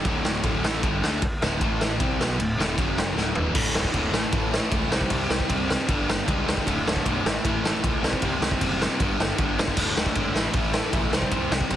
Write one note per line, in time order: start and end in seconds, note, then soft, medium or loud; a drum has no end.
0.05 0.41 D1 loud
0.05 0.42 D2 medium
0.05 0.43 A2 loud
0.05 0.43 D3 loud
0.05 kick loud
0.05 ride medium
0.25 snare loud
0.43 0.61 D1 loud
0.43 0.63 D2 loud
0.43 0.63 A2 loud
0.43 0.63 D3 loud
0.43 kick loud
0.43 ride medium
0.62 0.81 A1 loud
0.62 0.82 A2 medium
0.62 0.83 E3 loud
0.62 0.83 A3 loud
0.62 snare loud
0.83 1.01 G1 loud
0.83 1.02 G2 loud
0.83 1.01 D3 loud
0.83 1.02 G3 loud
0.83 kick loud
0.83 ride medium
1.02 1.20 D2 loud
1.02 1.21 D3 medium
1.02 1.22 A3 loud
1.02 1.22 D4 loud
1.02 snare loud
1.22 muted picked electric bass stroke soft
1.22 muted distorted electric guitar stroke medium
1.22 kick loud
1.22 ride medium
1.41 1.59 D1 loud
1.41 1.60 D2 medium
1.41 1.60 A2 loud
1.41 1.61 D3 loud
1.41 snare loud
1.61 1.97 A1 loud
1.61 1.99 A2 medium
1.61 2.00 E3 loud
1.61 2.00 A3 loud
1.61 kick loud
1.61 ride medium
1.81 snare loud
2.00 2.18 C2 loud
2.00 2.18 C3 loud
2.00 2.19 G3 loud
2.00 2.19 C4 loud
2.00 kick loud
2.00 ride medium
2.19 2.38 B1 loud
2.19 2.38 B2 medium
2.19 2.39 F#3 loud
2.19 2.39 B3 loud
2.19 snare loud
2.38 2.56 D1 medium
2.38 2.54 D2 medium
2.38 2.55 A2 medium
2.38 ride medium
2.57 2.76 D1 loud
2.57 2.76 D2 loud
2.57 2.77 A2 loud
2.57 2.78 D3 loud
2.57 snare loud
2.77 3.14 F#1 medium
2.77 3.15 F#2 loud
2.77 3.16 C#3 loud
2.77 3.16 F#3 loud
2.77 kick loud
2.77 ride medium
2.98 snare loud
3.15 3.34 D1 loud
3.15 3.34 D2 medium
3.15 3.35 A2 medium
3.15 3.35 D3 loud
3.15 snare medium
3.35 3.54 E1 medium
3.35 3.53 E2 medium
3.35 3.54 B2 loud
3.35 3.54 E3 loud
3.35 floor tom loud
3.53 3.68 D1 medium
3.53 3.72 D2 loud
3.53 3.73 A2 loud
3.53 3.73 D3 loud
3.53 kick loud
3.53 crash loud
3.73 3.87 D1 medium
3.73 3.92 D2 medium
3.73 3.92 A2 medium
3.73 3.93 D3 medium
3.73 snare loud
3.84 kick medium
3.93 4.07 D1 medium
3.93 4.12 D2 medium
3.93 4.11 A2 loud
3.93 4.12 D3 medium
3.93 kick loud
3.93 ride medium
4.11 4.25 A1 loud
4.11 4.31 A2 loud
4.11 4.32 E3 loud
4.11 4.33 A3 loud
4.11 snare loud
4.32 4.58 A1 loud
4.32 4.50 A2 loud
4.32 4.51 E3 loud
4.32 4.52 A3 loud
4.32 kick loud
4.32 ride medium
4.51 4.69 A2 medium
4.51 4.70 E3 medium
4.51 4.70 A3 medium
4.51 snare loud
4.70 4.85 C#2 loud
4.70 4.89 A2 medium
4.70 4.90 E3 medium
4.70 4.90 A3 loud
4.70 kick loud
4.70 ride medium
4.89 5.03 C2 loud
4.89 5.09 C3 medium
4.89 5.10 G3 medium
4.89 5.11 C4 loud
4.89 snare loud
5.01 kick medium
5.10 5.23 C2 loud
5.10 5.29 C3 loud
5.10 5.29 G3 loud
5.10 5.30 C4 loud
5.10 kick loud
5.10 ride medium
5.30 5.43 C2 loud
5.30 5.47 C3 medium
5.30 5.48 G3 loud
5.30 5.48 C4 loud
5.30 snare loud
5.40 kick medium
5.48 5.76 C2 loud
5.48 5.67 C3 medium
5.48 5.68 G3 medium
5.48 5.69 C4 loud
5.48 kick medium
5.48 ride medium
5.68 5.87 C3 medium
5.68 5.87 G3 medium
5.68 5.88 C4 medium
5.68 snare loud
5.88 6.02 G1 loud
5.88 6.06 G2 loud
5.88 6.07 D3 loud
5.88 6.07 G3 loud
5.88 kick loud
5.88 ride medium
6.07 6.21 G1 medium
6.07 6.25 G2 loud
6.07 6.25 D3 medium
6.07 6.26 G3 loud
6.07 snare loud
6.26 6.54 C#2 loud
6.26 6.45 G2 loud
6.26 6.46 D3 medium
6.26 6.47 G3 loud
6.26 kick loud
6.26 ride medium
6.46 6.65 G2 medium
6.46 6.65 D3 medium
6.46 6.66 G3 loud
6.46 snare loud
6.57 kick medium
6.65 6.80 D1 loud
6.65 6.83 D2 loud
6.65 6.84 A2 loud
6.65 6.85 D3 loud
6.65 kick loud
6.65 ride medium
6.84 6.98 D1 medium
6.84 7.04 D2 medium
6.84 7.04 A2 medium
6.84 7.05 D3 loud
6.84 snare loud
6.96 kick medium
7.05 7.18 B1 loud
7.05 7.23 D2 medium
7.05 7.24 A2 loud
7.05 7.24 D3 medium
7.05 kick medium
7.05 ride medium
7.25 7.38 A1 loud
7.25 7.43 A2 medium
7.25 7.44 E3 loud
7.25 7.45 A3 loud
7.25 snare loud
7.44 7.70 A1 loud
7.44 7.63 A2 medium
7.44 7.64 E3 loud
7.44 7.64 A3 loud
7.44 kick loud
7.44 ride medium
7.64 7.83 A2 medium
7.64 7.84 E3 medium
7.64 7.84 A3 loud
7.64 snare loud
7.84 7.96 C#2 loud
7.84 8.02 A2 medium
7.84 8.02 E3 loud
7.84 8.02 A3 medium
7.84 kick loud
7.84 ride medium
8.02 8.15 C2 medium
8.02 8.22 C3 loud
8.02 8.23 G3 loud
8.02 8.23 C4 loud
8.02 snare loud
8.13 kick medium
8.22 8.35 C2 loud
8.22 8.40 C3 loud
8.22 8.41 G3 loud
8.22 8.42 C4 loud
8.22 kick loud
8.22 ride medium
8.40 8.53 C2 medium
8.40 8.60 C3 medium
8.40 8.60 G3 medium
8.40 8.61 C4 loud
8.40 snare loud
8.51 kick loud
8.61 8.86 F#1 loud
8.61 8.79 C3 medium
8.61 8.80 G3 loud
8.61 8.81 C4 loud
8.61 kick medium
8.61 ride medium
8.81 8.98 C3 medium
8.81 8.99 G3 medium
8.81 8.99 C4 loud
8.81 snare loud
9.00 9.13 G1 loud
9.00 9.19 G2 medium
9.00 9.20 D3 loud
9.00 9.20 G3 loud
9.00 kick loud
9.00 ride medium
9.19 9.32 G1 medium
9.19 9.37 G2 medium
9.19 9.38 D3 medium
9.19 9.39 G3 medium
9.19 snare loud
9.38 9.64 G1 loud
9.38 9.56 G2 medium
9.38 9.57 D3 medium
9.38 9.58 G3 loud
9.38 kick loud
9.38 ride medium
9.57 9.75 G2 loud
9.57 9.76 D3 loud
9.57 9.76 G3 loud
9.57 snare loud
9.68 kick medium
9.77 9.90 D1 loud
9.77 9.95 D2 loud
9.77 9.95 A2 loud
9.77 9.96 D3 loud
9.77 kick loud
9.77 crash loud
9.95 10.08 D1 medium
9.95 10.13 D2 medium
9.95 10.14 A2 medium
9.95 10.15 D3 medium
9.95 snare loud
10.06 kick loud
10.15 10.28 G#1 loud
10.15 10.33 D2 medium
10.15 10.32 A2 medium
10.15 10.34 D3 medium
10.15 kick medium
10.15 ride medium
10.34 10.47 A1 loud
10.34 10.52 A2 loud
10.34 10.53 E3 loud
10.34 10.54 A3 loud
10.34 snare loud
10.53 10.80 A1 medium
10.53 10.71 A2 loud
10.53 10.72 E3 loud
10.53 10.73 A3 loud
10.53 kick loud
10.53 ride medium
10.73 10.91 A2 medium
10.73 10.92 E3 medium
10.73 10.93 A3 medium
10.73 snare loud
10.92 11.06 B1 medium
10.92 11.11 A2 loud
10.92 11.11 E3 medium
10.92 11.12 A3 loud
10.92 kick loud
10.92 ride medium
11.11 11.24 C2 loud
11.11 11.30 C3 loud
11.11 11.31 G3 loud
11.11 11.32 C4 medium
11.11 snare loud
11.22 kick medium
11.31 11.44 C2 loud
11.31 11.50 C3 loud
11.31 11.51 G3 loud
11.31 11.51 C4 loud
11.31 kick loud
11.31 ride medium
11.51 11.63 C2 medium
11.51 11.70 C3 medium
11.51 11.70 G3 loud
11.51 11.71 C4 loud
11.51 snare loud
11.61 kick loud
11.70 11.76 C2 loud
11.70 11.76 C3 medium
11.70 11.76 G3 loud
11.70 11.76 C4 medium
11.70 kick loud
11.70 ride medium